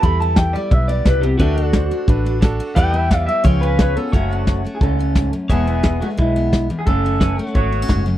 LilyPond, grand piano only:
\new Staff \with { instrumentName = "Grand piano" } { \time 4/4 \key e \minor \tempo 4 = 176 <e' g' a'>4 <e' g' a'>4 <e' g' b'>4 <e' g' d''>4 | <d' fis' a'>4 <d' fis' c''>4 <d' fis' b'>4 <d' fis' a'>4 | <e' g' b'>4 <e' g' d''>4 <eis' gis' cis''>4 <eis' gis' cis''>4 | \key fis \minor r1 |
r1 | r1 | }